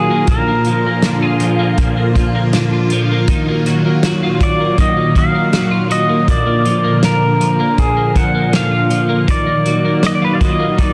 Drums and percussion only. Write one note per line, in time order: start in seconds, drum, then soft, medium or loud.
0.27 kick loud
0.27 closed hi-hat medium
0.65 closed hi-hat soft
1.02 snare medium
1.02 closed hi-hat medium
1.40 closed hi-hat soft
1.78 kick medium
1.78 closed hi-hat medium
2.15 kick medium
2.15 closed hi-hat soft
2.53 snare medium
2.53 closed hi-hat medium
2.90 closed hi-hat medium
3.28 kick medium
3.28 closed hi-hat medium
3.66 closed hi-hat soft
4.03 snare medium
4.03 closed hi-hat medium
4.41 kick medium
4.41 closed hi-hat soft
4.78 kick medium
4.78 closed hi-hat medium
5.15 kick medium
5.15 closed hi-hat soft
5.53 snare loud
5.53 closed hi-hat medium
5.91 closed hi-hat medium
6.28 kick medium
6.28 closed hi-hat medium
6.66 closed hi-hat soft
7.03 snare loud
7.03 closed hi-hat medium
7.41 closed hi-hat soft
7.78 kick medium
7.78 closed hi-hat soft
8.16 kick medium
8.16 closed hi-hat medium
8.53 snare medium
8.53 closed hi-hat medium
8.90 closed hi-hat medium
9.28 kick loud
9.28 closed hi-hat medium
9.66 closed hi-hat soft
10.03 snare loud
10.03 closed hi-hat medium
10.41 kick medium
10.41 closed hi-hat soft
10.78 kick medium
10.78 closed hi-hat soft